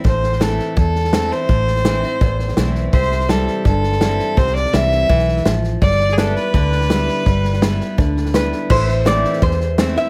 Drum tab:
CC |----------------|----------------|----------------|----------------|
HH |----p-------p---|----p-------p---|----p-------p---|----p-------p---|
SD |o-ooo-o-o-ooo-o-|o-ooo-o-o-ooo-o-|ooooo-o-o-ooo-o-|ooooo-o-ooooo-o-|
BD |o-------o-------|o-------o-------|o-------o-------|o-------o-------|

CC |----------------|----------------|x---------------|
HH |----p-------p---|----p-------p---|----p-------p---|
SD |ooooo-o-o-ooo-o-|o-ooo-o-o-ooo-o-|o-o-o-ooooo-o-o-|
BD |o-------o-------|o-------o-------|o-------o-------|